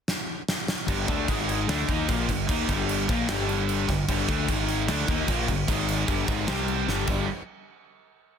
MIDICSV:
0, 0, Header, 1, 4, 480
1, 0, Start_track
1, 0, Key_signature, -2, "minor"
1, 0, Tempo, 399734
1, 1062, Time_signature, 4, 2, 24, 8
1, 10067, End_track
2, 0, Start_track
2, 0, Title_t, "Overdriven electric guitar"
2, 0, Program_c, 0, 29
2, 1040, Note_on_c, 0, 43, 96
2, 1045, Note_on_c, 0, 50, 106
2, 1048, Note_on_c, 0, 55, 116
2, 1275, Note_off_c, 0, 50, 0
2, 1284, Note_off_c, 0, 43, 0
2, 1288, Note_off_c, 0, 55, 0
2, 1289, Note_on_c, 0, 50, 95
2, 1294, Note_on_c, 0, 57, 92
2, 1302, Note_on_c, 0, 62, 111
2, 1529, Note_off_c, 0, 50, 0
2, 1531, Note_off_c, 0, 57, 0
2, 1531, Note_on_c, 0, 44, 110
2, 1535, Note_off_c, 0, 62, 0
2, 1538, Note_on_c, 0, 51, 109
2, 1544, Note_on_c, 0, 56, 107
2, 2011, Note_off_c, 0, 44, 0
2, 2012, Note_off_c, 0, 56, 0
2, 2013, Note_off_c, 0, 51, 0
2, 2017, Note_on_c, 0, 50, 92
2, 2017, Note_on_c, 0, 57, 92
2, 2026, Note_on_c, 0, 62, 111
2, 2252, Note_off_c, 0, 50, 0
2, 2254, Note_off_c, 0, 57, 0
2, 2257, Note_on_c, 0, 51, 79
2, 2258, Note_off_c, 0, 62, 0
2, 2263, Note_on_c, 0, 58, 97
2, 2268, Note_on_c, 0, 63, 100
2, 2494, Note_off_c, 0, 51, 0
2, 2497, Note_off_c, 0, 58, 0
2, 2499, Note_off_c, 0, 63, 0
2, 2499, Note_on_c, 0, 46, 96
2, 2506, Note_on_c, 0, 53, 86
2, 2515, Note_on_c, 0, 58, 109
2, 2735, Note_off_c, 0, 46, 0
2, 2739, Note_off_c, 0, 53, 0
2, 2739, Note_on_c, 0, 43, 59
2, 2743, Note_off_c, 0, 58, 0
2, 2743, Note_on_c, 0, 50, 69
2, 2935, Note_off_c, 0, 43, 0
2, 2937, Note_off_c, 0, 50, 0
2, 2973, Note_on_c, 0, 51, 93
2, 2983, Note_on_c, 0, 58, 90
2, 2986, Note_on_c, 0, 63, 114
2, 3213, Note_off_c, 0, 51, 0
2, 3218, Note_off_c, 0, 58, 0
2, 3219, Note_off_c, 0, 63, 0
2, 3219, Note_on_c, 0, 43, 92
2, 3225, Note_on_c, 0, 50, 99
2, 3229, Note_on_c, 0, 55, 112
2, 3692, Note_off_c, 0, 50, 0
2, 3697, Note_off_c, 0, 43, 0
2, 3697, Note_on_c, 0, 46, 97
2, 3700, Note_off_c, 0, 55, 0
2, 3705, Note_on_c, 0, 53, 97
2, 3708, Note_on_c, 0, 58, 108
2, 3936, Note_off_c, 0, 46, 0
2, 3940, Note_off_c, 0, 53, 0
2, 3941, Note_off_c, 0, 58, 0
2, 3942, Note_on_c, 0, 43, 97
2, 3948, Note_on_c, 0, 50, 96
2, 3957, Note_on_c, 0, 55, 103
2, 4650, Note_off_c, 0, 43, 0
2, 4659, Note_off_c, 0, 50, 0
2, 4665, Note_on_c, 0, 43, 69
2, 4666, Note_off_c, 0, 55, 0
2, 4673, Note_on_c, 0, 50, 68
2, 4859, Note_off_c, 0, 43, 0
2, 4863, Note_off_c, 0, 50, 0
2, 4902, Note_on_c, 0, 43, 98
2, 4906, Note_on_c, 0, 50, 103
2, 4911, Note_on_c, 0, 55, 117
2, 5128, Note_off_c, 0, 50, 0
2, 5139, Note_off_c, 0, 43, 0
2, 5142, Note_on_c, 0, 50, 94
2, 5143, Note_off_c, 0, 55, 0
2, 5147, Note_on_c, 0, 57, 96
2, 5153, Note_on_c, 0, 62, 111
2, 5377, Note_on_c, 0, 44, 95
2, 5379, Note_off_c, 0, 50, 0
2, 5381, Note_off_c, 0, 57, 0
2, 5385, Note_off_c, 0, 62, 0
2, 5387, Note_on_c, 0, 51, 107
2, 5391, Note_on_c, 0, 56, 113
2, 5846, Note_off_c, 0, 51, 0
2, 5851, Note_on_c, 0, 50, 97
2, 5853, Note_off_c, 0, 56, 0
2, 5856, Note_off_c, 0, 44, 0
2, 5858, Note_on_c, 0, 57, 90
2, 5865, Note_on_c, 0, 62, 101
2, 6089, Note_off_c, 0, 50, 0
2, 6094, Note_on_c, 0, 51, 95
2, 6097, Note_off_c, 0, 57, 0
2, 6099, Note_off_c, 0, 62, 0
2, 6103, Note_on_c, 0, 58, 94
2, 6104, Note_on_c, 0, 63, 97
2, 6330, Note_off_c, 0, 51, 0
2, 6333, Note_off_c, 0, 58, 0
2, 6335, Note_on_c, 0, 46, 85
2, 6340, Note_off_c, 0, 63, 0
2, 6346, Note_on_c, 0, 53, 87
2, 6348, Note_on_c, 0, 58, 105
2, 6575, Note_off_c, 0, 46, 0
2, 6581, Note_off_c, 0, 53, 0
2, 6581, Note_off_c, 0, 58, 0
2, 6585, Note_on_c, 0, 43, 67
2, 6593, Note_on_c, 0, 50, 74
2, 6779, Note_off_c, 0, 43, 0
2, 6783, Note_off_c, 0, 50, 0
2, 6816, Note_on_c, 0, 44, 106
2, 6823, Note_on_c, 0, 51, 105
2, 6829, Note_on_c, 0, 56, 118
2, 7293, Note_off_c, 0, 44, 0
2, 7298, Note_off_c, 0, 51, 0
2, 7298, Note_on_c, 0, 43, 91
2, 7301, Note_off_c, 0, 56, 0
2, 7305, Note_on_c, 0, 50, 109
2, 7308, Note_on_c, 0, 55, 113
2, 7526, Note_off_c, 0, 43, 0
2, 7531, Note_on_c, 0, 44, 81
2, 7536, Note_off_c, 0, 50, 0
2, 7541, Note_off_c, 0, 55, 0
2, 7541, Note_on_c, 0, 51, 104
2, 7547, Note_on_c, 0, 56, 96
2, 7764, Note_off_c, 0, 51, 0
2, 7768, Note_off_c, 0, 56, 0
2, 7769, Note_on_c, 0, 48, 81
2, 7772, Note_off_c, 0, 44, 0
2, 7773, Note_on_c, 0, 55, 98
2, 7780, Note_on_c, 0, 60, 99
2, 8245, Note_off_c, 0, 55, 0
2, 8246, Note_on_c, 0, 43, 95
2, 8250, Note_off_c, 0, 48, 0
2, 8256, Note_off_c, 0, 60, 0
2, 8256, Note_on_c, 0, 50, 103
2, 8260, Note_on_c, 0, 55, 101
2, 8479, Note_off_c, 0, 43, 0
2, 8493, Note_off_c, 0, 50, 0
2, 8494, Note_on_c, 0, 43, 86
2, 8498, Note_off_c, 0, 55, 0
2, 8507, Note_on_c, 0, 50, 93
2, 8512, Note_on_c, 0, 55, 107
2, 8691, Note_off_c, 0, 43, 0
2, 8698, Note_off_c, 0, 50, 0
2, 8701, Note_off_c, 0, 55, 0
2, 10067, End_track
3, 0, Start_track
3, 0, Title_t, "Fingered electric bass"
3, 0, Program_c, 1, 33
3, 1058, Note_on_c, 1, 31, 97
3, 1283, Note_off_c, 1, 31, 0
3, 1295, Note_on_c, 1, 38, 105
3, 1522, Note_off_c, 1, 38, 0
3, 1537, Note_on_c, 1, 32, 97
3, 1987, Note_off_c, 1, 32, 0
3, 2019, Note_on_c, 1, 38, 86
3, 2245, Note_off_c, 1, 38, 0
3, 2261, Note_on_c, 1, 39, 89
3, 2486, Note_off_c, 1, 39, 0
3, 2510, Note_on_c, 1, 34, 102
3, 2731, Note_off_c, 1, 34, 0
3, 2744, Note_on_c, 1, 31, 85
3, 2968, Note_off_c, 1, 31, 0
3, 2988, Note_on_c, 1, 39, 103
3, 3211, Note_off_c, 1, 39, 0
3, 3228, Note_on_c, 1, 31, 103
3, 3675, Note_off_c, 1, 31, 0
3, 3709, Note_on_c, 1, 34, 95
3, 3932, Note_off_c, 1, 34, 0
3, 3947, Note_on_c, 1, 31, 98
3, 4620, Note_off_c, 1, 31, 0
3, 4670, Note_on_c, 1, 31, 90
3, 4893, Note_off_c, 1, 31, 0
3, 4907, Note_on_c, 1, 31, 103
3, 5132, Note_off_c, 1, 31, 0
3, 5144, Note_on_c, 1, 38, 94
3, 5370, Note_off_c, 1, 38, 0
3, 5390, Note_on_c, 1, 32, 83
3, 5836, Note_off_c, 1, 32, 0
3, 5875, Note_on_c, 1, 38, 99
3, 6096, Note_off_c, 1, 38, 0
3, 6102, Note_on_c, 1, 39, 85
3, 6329, Note_off_c, 1, 39, 0
3, 6346, Note_on_c, 1, 34, 102
3, 6571, Note_off_c, 1, 34, 0
3, 6585, Note_on_c, 1, 31, 86
3, 6810, Note_off_c, 1, 31, 0
3, 6821, Note_on_c, 1, 32, 107
3, 7270, Note_off_c, 1, 32, 0
3, 7304, Note_on_c, 1, 31, 78
3, 7529, Note_off_c, 1, 31, 0
3, 7541, Note_on_c, 1, 32, 102
3, 7767, Note_off_c, 1, 32, 0
3, 7781, Note_on_c, 1, 36, 81
3, 8229, Note_off_c, 1, 36, 0
3, 8262, Note_on_c, 1, 31, 93
3, 8487, Note_off_c, 1, 31, 0
3, 8504, Note_on_c, 1, 31, 98
3, 8727, Note_off_c, 1, 31, 0
3, 10067, End_track
4, 0, Start_track
4, 0, Title_t, "Drums"
4, 97, Note_on_c, 9, 38, 70
4, 217, Note_off_c, 9, 38, 0
4, 582, Note_on_c, 9, 38, 87
4, 702, Note_off_c, 9, 38, 0
4, 821, Note_on_c, 9, 38, 95
4, 941, Note_off_c, 9, 38, 0
4, 1059, Note_on_c, 9, 36, 113
4, 1066, Note_on_c, 9, 49, 91
4, 1179, Note_off_c, 9, 36, 0
4, 1186, Note_off_c, 9, 49, 0
4, 1300, Note_on_c, 9, 36, 117
4, 1305, Note_on_c, 9, 49, 62
4, 1420, Note_off_c, 9, 36, 0
4, 1425, Note_off_c, 9, 49, 0
4, 1541, Note_on_c, 9, 36, 98
4, 1543, Note_on_c, 9, 49, 81
4, 1661, Note_off_c, 9, 36, 0
4, 1663, Note_off_c, 9, 49, 0
4, 1788, Note_on_c, 9, 49, 72
4, 1908, Note_off_c, 9, 49, 0
4, 2029, Note_on_c, 9, 49, 80
4, 2032, Note_on_c, 9, 38, 112
4, 2149, Note_off_c, 9, 49, 0
4, 2152, Note_off_c, 9, 38, 0
4, 2265, Note_on_c, 9, 36, 106
4, 2268, Note_on_c, 9, 49, 59
4, 2385, Note_off_c, 9, 36, 0
4, 2388, Note_off_c, 9, 49, 0
4, 2506, Note_on_c, 9, 49, 85
4, 2507, Note_on_c, 9, 36, 120
4, 2626, Note_off_c, 9, 49, 0
4, 2627, Note_off_c, 9, 36, 0
4, 2747, Note_on_c, 9, 36, 75
4, 2749, Note_on_c, 9, 49, 57
4, 2867, Note_off_c, 9, 36, 0
4, 2869, Note_off_c, 9, 49, 0
4, 2989, Note_on_c, 9, 36, 118
4, 2993, Note_on_c, 9, 49, 91
4, 3109, Note_off_c, 9, 36, 0
4, 3113, Note_off_c, 9, 49, 0
4, 3228, Note_on_c, 9, 36, 104
4, 3230, Note_on_c, 9, 49, 60
4, 3349, Note_off_c, 9, 36, 0
4, 3350, Note_off_c, 9, 49, 0
4, 3470, Note_on_c, 9, 49, 77
4, 3591, Note_off_c, 9, 49, 0
4, 3711, Note_on_c, 9, 36, 122
4, 3718, Note_on_c, 9, 49, 65
4, 3831, Note_off_c, 9, 36, 0
4, 3838, Note_off_c, 9, 49, 0
4, 3945, Note_on_c, 9, 49, 83
4, 3948, Note_on_c, 9, 38, 113
4, 4065, Note_off_c, 9, 49, 0
4, 4068, Note_off_c, 9, 38, 0
4, 4189, Note_on_c, 9, 49, 56
4, 4310, Note_off_c, 9, 49, 0
4, 4428, Note_on_c, 9, 49, 82
4, 4548, Note_off_c, 9, 49, 0
4, 4667, Note_on_c, 9, 36, 89
4, 4668, Note_on_c, 9, 49, 57
4, 4671, Note_on_c, 9, 38, 33
4, 4787, Note_off_c, 9, 36, 0
4, 4788, Note_off_c, 9, 49, 0
4, 4791, Note_off_c, 9, 38, 0
4, 4904, Note_on_c, 9, 49, 82
4, 4906, Note_on_c, 9, 36, 112
4, 5024, Note_off_c, 9, 49, 0
4, 5026, Note_off_c, 9, 36, 0
4, 5145, Note_on_c, 9, 49, 58
4, 5146, Note_on_c, 9, 36, 96
4, 5265, Note_off_c, 9, 49, 0
4, 5266, Note_off_c, 9, 36, 0
4, 5385, Note_on_c, 9, 49, 78
4, 5386, Note_on_c, 9, 36, 107
4, 5505, Note_off_c, 9, 49, 0
4, 5506, Note_off_c, 9, 36, 0
4, 5623, Note_on_c, 9, 49, 64
4, 5744, Note_off_c, 9, 49, 0
4, 5863, Note_on_c, 9, 49, 90
4, 5865, Note_on_c, 9, 38, 107
4, 5983, Note_off_c, 9, 49, 0
4, 5986, Note_off_c, 9, 38, 0
4, 6100, Note_on_c, 9, 49, 64
4, 6104, Note_on_c, 9, 36, 110
4, 6220, Note_off_c, 9, 49, 0
4, 6224, Note_off_c, 9, 36, 0
4, 6339, Note_on_c, 9, 49, 93
4, 6343, Note_on_c, 9, 36, 109
4, 6459, Note_off_c, 9, 49, 0
4, 6463, Note_off_c, 9, 36, 0
4, 6584, Note_on_c, 9, 36, 85
4, 6587, Note_on_c, 9, 49, 57
4, 6704, Note_off_c, 9, 36, 0
4, 6707, Note_off_c, 9, 49, 0
4, 6824, Note_on_c, 9, 36, 115
4, 6827, Note_on_c, 9, 49, 91
4, 6944, Note_off_c, 9, 36, 0
4, 6947, Note_off_c, 9, 49, 0
4, 7066, Note_on_c, 9, 49, 68
4, 7186, Note_off_c, 9, 49, 0
4, 7301, Note_on_c, 9, 49, 74
4, 7303, Note_on_c, 9, 36, 107
4, 7421, Note_off_c, 9, 49, 0
4, 7423, Note_off_c, 9, 36, 0
4, 7542, Note_on_c, 9, 36, 119
4, 7545, Note_on_c, 9, 49, 64
4, 7663, Note_off_c, 9, 36, 0
4, 7665, Note_off_c, 9, 49, 0
4, 7778, Note_on_c, 9, 49, 76
4, 7781, Note_on_c, 9, 38, 125
4, 7898, Note_off_c, 9, 49, 0
4, 7901, Note_off_c, 9, 38, 0
4, 8021, Note_on_c, 9, 49, 55
4, 8141, Note_off_c, 9, 49, 0
4, 8268, Note_on_c, 9, 38, 69
4, 8389, Note_off_c, 9, 38, 0
4, 8493, Note_on_c, 9, 57, 82
4, 8499, Note_on_c, 9, 36, 101
4, 8613, Note_off_c, 9, 57, 0
4, 8619, Note_off_c, 9, 36, 0
4, 10067, End_track
0, 0, End_of_file